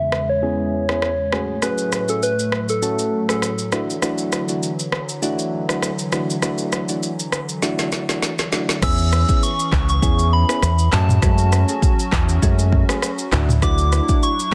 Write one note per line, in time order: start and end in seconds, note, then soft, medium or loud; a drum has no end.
0.00 1.30 E2 medium
0.00 1.30 C#3 medium
0.00 1.30 G#3 medium
0.00 0.31 E5 loud
0.12 cross-stick medium
0.29 1.65 C#5 loud
0.42 0.85 B3 medium
0.42 0.85 C#4 medium
0.42 0.85 E4 medium
0.42 0.85 G#4 loud
0.89 1.11 B3 medium
0.89 1.11 C#4 medium
0.89 1.11 E4 medium
0.89 1.11 G#4 medium
0.89 cross-stick medium
1.02 cross-stick medium
1.32 3.70 A2 medium
1.32 8.79 F#3 medium
1.32 1.56 A3 medium
1.32 3.70 A3 medium
1.32 1.56 C#4 medium
1.32 1.56 F#4 medium
1.32 1.56 G#4 medium
1.32 cross-stick medium
1.62 2.05 A3 medium
1.62 2.05 C#4 medium
1.62 2.05 F#4 medium
1.62 2.05 G#4 medium
1.62 2.11 B4 loud
1.62 cross-stick medium
1.62 shaker medium
1.78 shaker soft
1.92 cross-stick medium
1.92 shaker medium
2.08 2.31 A3 medium
2.08 2.31 C#4 medium
2.08 2.31 F#4 medium
2.08 2.31 G#4 medium
2.08 2.25 A4 medium
2.08 shaker medium
2.23 2.71 B4 medium
2.23 shaker medium
2.39 shaker medium
2.52 cross-stick medium
2.69 3.29 A4 medium
2.69 shaker medium
2.82 3.25 A3 medium
2.82 3.25 C#4 medium
2.82 3.25 F#4 medium
2.82 3.25 A4 loud
2.82 shaker medium
2.99 shaker medium
3.28 3.50 A3 medium
3.28 3.51 C#4 medium
3.28 3.51 F#4 medium
3.28 3.51 G#4 medium
3.28 3.70 A4 medium
3.28 cross-stick medium
3.28 shaker medium
3.42 cross-stick medium
3.42 shaker medium
3.58 shaker soft
3.72 8.78 D3 medium
3.72 8.78 E3 medium
3.72 3.95 A3 medium
3.72 3.96 D4 medium
3.72 3.96 E4 medium
3.72 3.96 F#4 medium
3.72 cross-stick medium
3.72 shaker soft
3.90 shaker soft
4.02 4.45 A3 medium
4.02 4.45 D4 medium
4.02 4.45 E4 medium
4.02 4.45 F#4 medium
4.02 cross-stick medium
4.02 shaker medium
4.18 shaker soft
4.32 cross-stick medium
4.32 shaker medium
4.49 4.71 A3 medium
4.49 4.71 D4 medium
4.49 4.71 E4 medium
4.49 4.71 F#4 medium
4.49 shaker medium
4.63 shaker medium
4.79 shaker medium
4.92 cross-stick medium
5.09 shaker soft
5.22 5.65 A3 medium
5.22 5.65 D4 medium
5.22 5.65 E4 medium
5.22 5.65 F#4 loud
5.22 shaker medium
5.39 shaker medium
5.69 5.91 A3 medium
5.69 5.91 D4 medium
5.69 5.91 E4 medium
5.69 5.91 F#4 medium
5.69 cross-stick medium
5.69 shaker soft
5.82 cross-stick medium
5.82 shaker medium
5.99 shaker medium
6.12 6.36 A3 medium
6.12 6.36 D4 medium
6.12 6.36 E4 medium
6.12 6.36 F#4 medium
6.12 cross-stick medium
6.12 shaker soft
6.30 shaker soft
6.42 6.85 A3 medium
6.42 6.85 D4 medium
6.42 6.85 E4 medium
6.42 6.85 F#4 medium
6.42 cross-stick medium
6.42 shaker medium
6.58 shaker soft
6.72 cross-stick medium
6.72 shaker medium
6.89 7.11 A3 medium
6.89 7.11 D4 medium
6.89 7.11 E4 medium
6.89 7.11 F#4 medium
6.89 shaker medium
7.03 shaker medium
7.19 shaker medium
7.32 cross-stick medium
7.32 shaker medium
7.49 shaker soft
7.62 8.05 A3 medium
7.62 8.05 D4 medium
7.62 8.05 E4 medium
7.62 8.05 F#4 loud
7.62 snare medium
7.62 shaker medium
7.79 snare soft
7.79 shaker medium
7.92 snare medium
7.92 shaker medium
8.09 8.31 A3 medium
8.09 8.31 D4 medium
8.09 8.31 E4 medium
8.09 8.31 F#4 medium
8.09 snare medium
8.09 shaker medium
8.22 snare medium
8.22 shaker medium
8.39 snare medium
8.39 shaker medium
8.52 8.76 A3 medium
8.52 8.76 D4 medium
8.52 8.76 E4 medium
8.52 8.76 F#4 medium
8.52 snare medium
8.52 shaker soft
8.69 snare medium
8.69 shaker soft
8.82 9.23 E2 loud
8.82 10.90 E3 medium
8.82 9.25 B3 loud
8.82 10.90 C#4 medium
8.82 9.25 C#4 medium
8.82 9.25 E4 medium
8.82 10.90 G#4 medium
8.82 9.25 G#4 loud
8.82 9.37 E6 loud
8.82 kick loud
8.82 cross-stick loud
8.82 crash loud
8.82 shaker medium
8.98 shaker medium
9.12 cross-stick medium
9.12 shaker medium
9.29 9.51 B3 medium
9.29 9.51 C#4 medium
9.29 9.51 E4 medium
9.29 9.51 G#4 medium
9.29 kick medium
9.29 shaker medium
9.37 9.45 E6 medium
9.43 9.89 C#6 loud
9.43 shaker medium
9.60 shaker medium
9.72 9.98 C#2 medium
9.72 kick medium
9.72 cross-stick loud
9.72 clap loud
9.89 10.35 C#6 loud
9.89 shaker medium
10.02 10.43 E2 loud
10.02 10.45 B3 loud
10.02 10.45 C#4 medium
10.02 10.45 E4 medium
10.02 10.45 G#4 loud
10.02 kick loud
10.02 shaker medium
10.19 shaker medium
10.33 10.95 B5 loud
10.49 10.71 B3 medium
10.49 10.71 C#4 medium
10.49 10.71 E4 medium
10.49 10.71 G#4 medium
10.49 cross-stick loud
10.49 shaker medium
10.62 10.88 E2 medium
10.62 cross-stick medium
10.62 shaker medium
10.79 shaker medium
10.92 11.18 F#2 loud
10.92 13.30 F#3 medium
10.92 11.16 A3 medium
10.92 11.16 C#4 medium
10.92 13.30 C#4 medium
10.92 13.30 F#4 medium
10.92 11.16 F#4 medium
10.92 11.16 G#4 medium
10.92 13.33 A5 loud
10.92 cross-stick loud
10.92 clap loud
10.92 mid tom medium
10.92 shaker soft
11.09 mid tom medium
11.09 shaker medium
11.22 11.63 F#2 loud
11.22 11.65 G#3 loud
11.22 11.65 A3 loud
11.22 11.65 C#4 medium
11.22 11.65 F#4 medium
11.22 kick loud
11.22 cross-stick loud
11.22 shaker medium
11.38 shaker medium
11.52 cross-stick medium
11.52 shaker medium
11.69 11.91 A3 medium
11.69 11.91 C#4 medium
11.69 11.91 F#4 medium
11.69 11.91 G#4 medium
11.69 shaker medium
11.82 kick loud
11.82 shaker medium
11.99 shaker medium
12.12 12.38 E2 loud
12.12 kick medium
12.12 cross-stick loud
12.12 clap loud
12.29 shaker medium
12.42 12.83 F#2 loud
12.42 12.85 G#3 loud
12.42 12.85 A3 loud
12.42 12.85 C#4 medium
12.42 12.85 F#4 medium
12.42 kick medium
12.42 shaker medium
12.59 shaker medium
12.72 kick loud
12.89 13.11 A3 medium
12.89 13.11 C#4 medium
12.89 13.11 F#4 medium
12.89 13.11 G#4 medium
12.89 cross-stick loud
12.89 shaker medium
13.02 cross-stick medium
13.02 shaker medium
13.19 shaker medium
13.32 13.99 D2 loud
13.32 14.54 F#3 medium
13.32 13.56 A3 medium
13.32 14.54 D4 medium
13.32 13.56 D4 medium
13.32 14.54 E4 medium
13.32 13.56 E4 medium
13.32 13.56 F#4 medium
13.32 cross-stick loud
13.32 clap loud
13.32 mid tom medium
13.32 shaker soft
13.49 mid tom medium
13.49 shaker medium
13.62 14.05 A3 loud
13.62 14.05 D4 medium
13.62 14.05 E4 medium
13.62 14.05 F#4 loud
13.62 14.25 D6 loud
13.62 kick loud
13.62 cross-stick loud
13.62 shaker medium
13.78 shaker medium
13.92 cross-stick medium
13.92 shaker medium
14.09 14.31 A3 medium
14.09 14.31 D4 medium
14.09 14.31 E4 medium
14.09 14.31 F#4 medium
14.09 kick medium
14.09 shaker medium
14.23 14.54 C#6 loud
14.23 shaker medium
14.39 shaker medium